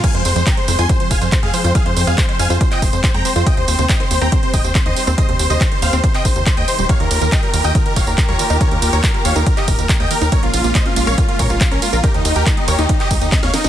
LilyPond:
<<
  \new Staff \with { instrumentName = "Supersaw synth" } { \time 4/4 \key f \minor \tempo 4 = 140 <f'' aes''>16 c''16 c''16 c''16 <g'' bes''>16 c''16 c''16 <aes'' c'''>16 c''16 c''16 <f'' aes''>16 c''16 c''16 <aes' f''>16 c''16 c''16 | <aes' f''>16 c''16 c''16 <aes' f''>16 c''16 c''16 <f'' aes''>16 c''16 c''16 <ees'' g''>16 c''16 c''16 c''16 <g'' bes''>16 c''16 c''16 | <ees'' g''>16 c''16 c''16 c''16 <ees'' g''>16 c''16 c''16 <g'' bes''>16 c''16 c''16 <ees'' g''>16 c''16 c''16 <c'' ees''>16 c''16 c''16 | <c'' ees''>16 c''16 c''16 <c'' ees''>16 c''16 c''16 <c'' f''>16 c''16 c''16 <ees'' g''>16 c''16 c''16 c''16 <ees'' g''>16 c''16 c''16 |
<des'' f''>16 bes'16 bes'16 bes'16 <ees'' g''>16 bes'16 bes'16 <ees'' g''>16 bes'16 bes'16 <des'' f''>16 bes'16 bes'16 <bes' des''>16 bes'16 bes'16 | <bes' des''>16 bes'16 bes'16 <bes' des''>16 bes'16 bes'16 <des'' f''>16 bes'16 bes'16 <g' ees''>16 bes'16 bes'16 bes'16 <ees'' g''>16 bes'16 bes'16 | <bes' des''>16 f'16 f'16 f'16 <c'' ees''>16 f'16 f'16 <des'' f''>16 f'16 f'16 <bes' des''>16 f'16 f'16 <des' bes'>16 f'16 f'16 | <g' bes'>16 ees'16 ees'16 <g' bes'>16 ees'16 ees'16 <bes' des''>16 ees'16 ees'16 <g' ees''>16 ees'16 ees'16 ees'16 <des'' f''>16 ees'16 ees'16 | }
  \new Staff \with { instrumentName = "String section" } { \time 4/4 \key f \minor << { <f aes>1~ | <f aes>1 | <ees g>1~ | <ees g>1 |
<bes f'>1~ | <bes f'>1 | aes1 | <ees f'>1 | } \\ { c'1~ | c'1~ | c'1~ | c'1 |
g'1~ | g'1 | des'1 | g'1 | } >> }
  \new Staff \with { instrumentName = "Synth arpeggio sound" } { \clef bass \time 4/4 \key f \minor f16 f16 r16 f16 r16 aes16 f16 f'16 f16 f16 r16 f16 r16 aes16 f16 f'16 | f16 f16 r16 f16 r16 aes16 f16 f'16 f16 f16 r16 f16 r16 aes16 f16 f'16 | c16 c16 r16 c16 r16 ees16 c16 c'16 c16 c16 r16 c16 r16 ees16 c16 c'16 | c16 c16 r16 c16 r16 ees16 c16 c'16 c16 c16 r16 c16 r16 c'16 c16 g16 |
ees16 ees16 r16 ees16 r16 g16 ees16 ees'16 ees16 ees16 r16 ees16 r16 g16 ees16 ees'16 | ees16 ees16 r16 ees16 r16 g16 ees16 ees'16 ees16 ees16 r16 ees16 r16 g16 ees16 ees'16 | bes16 bes16 r16 bes16 r16 des'16 bes16 bes'16 bes16 bes16 r16 bes16 r16 des'16 bes16 bes'16 | ees16 ees16 r16 ees16 r16 g16 ees16 ees'16 ees16 ees16 r16 ees16 r16 g16 ees16 ees'16 | }
  \new Staff \with { instrumentName = "Analog synth bass" } { \clef bass \time 4/4 \key f \minor r16 f,16 f,16 f,16 r8 f,16 f,16 r8 f,,16 f,16 r16 f,16 r16 f,16 | r16 f,16 f,16 f,16 r8 f,16 f,16 r8 f,,16 f,16 r16 f,16 r16 f,16 | r16 ees,16 ees,16 ees,16 r8 ees,16 ees,16 r8 ees,,16 ees,16 r16 ees,16 r16 ees,16 | r16 ees,16 ees,16 ees,16 r8 ees,16 ees,16 r8 bes,,16 ees,16 r16 ees,16 r16 ees,,16 |
r16 ees,16 ees,16 ees,16 r8 ees,16 ees,16 r8 ees,,16 ees,16 r16 ees,16 r16 ees,16 | r16 ees,16 ees,16 ees,16 r8 ees,16 ees,16 r8 ees,,16 ees,16 r16 ees,16 r16 ees,16 | r16 bes,,16 bes,,16 bes,,16 r8 bes,,16 bes,,16 r8 bes,16 bes,,16 r16 bes,,16 r16 bes,,16 | r16 ees,16 ees,16 ees,16 r8 ees,16 ees,16 r8 des,16 ees,16 r16 ees,16 r16 ees,,16 | }
  \new DrumStaff \with { instrumentName = "Drums" } \drummode { \time 4/4 <cymc hh bd tamb>16 hh16 <hho tamb>16 <hh tamb>16 <hc hh bd tamb>16 hh16 <hho tamb>16 <hh tamb>16 <hh bd tamb>16 hh16 <hho bd tamb>16 <hh tamb>16 <hc hh bd tamb>16 hh16 <hho tamb>16 <hh tamb>16 | <hh bd tamb>16 hh16 <hho tamb>16 <hh tamb>16 <hc hh bd tamb>16 hh16 <hho tamb>16 <hh tamb>16 <hh bd tamb>16 <hc hh>16 <hho bd tamb>16 <hh tamb>16 <hc hh bd tamb>16 hh16 <hho tamb>16 <hh tamb>16 | <hh bd tamb>16 hh16 <hho tamb>16 <hh tamb>16 <hc hh bd tamb>16 hh16 <hho tamb>16 <hh tamb>16 <hh bd tamb>16 hh16 <hho bd tamb>16 <hh tamb>16 <hc hh bd tamb>16 hh16 <hho tamb>16 <hh tamb>16 | <hh bd tamb>16 hh16 <hho tamb>16 <hh tamb>16 <hc hh bd tamb>16 hh16 <hho tamb>16 <hh tamb>16 <hh bd tamb>16 <hc hh>16 <hho bd tamb>16 <hh tamb>16 <hc hh bd tamb>16 hh16 <hho tamb>16 <hh tamb>16 |
<hh bd tamb>16 hh16 <hho cymr tamb>16 <hh tamb>16 <hc hh bd tamb>16 hh16 <hho cymr tamb>16 <hh tamb>16 <hh bd tamb>16 hh16 <hho bd cymr tamb>16 <hh tamb>16 <hc hh bd tamb>16 hh16 <hho cymr tamb>16 <hh tamb>16 | <hh bd tamb>16 hh16 <hho cymr tamb>16 <hh tamb>16 <hc hh bd tamb>16 hh16 <hho cymr tamb>16 <hh tamb>16 <hh bd tamb>16 <hc hh>16 <hho bd cymr tamb>16 <hh tamb>16 <hc hh bd tamb>16 hh16 <hho cymr tamb>16 <hh tamb>16 | <hh bd tamb>16 hh16 <hho cymr tamb>16 <hh tamb>16 <hc hh bd tamb>16 hh16 <hho cymr tamb>16 <hh tamb>16 <hh bd tamb>16 hh16 <hho bd cymr tamb>16 <hh tamb>16 <hc hh bd tamb>16 hh16 <hho cymr tamb>16 <hh tamb>16 | <hh bd tamb>16 hh16 <hho cymr tamb>16 <hh tamb>16 <hc hh bd tamb>16 hh16 <hho cymr tamb>16 <hh tamb>16 <hh bd tamb>16 <hc hh>16 <hho bd cymr tamb>16 <hh tamb>16 <hc hh bd sn tamb>16 <hh sn>16 <hho cymr sn tamb>16 <hh sn tamb>16 | }
>>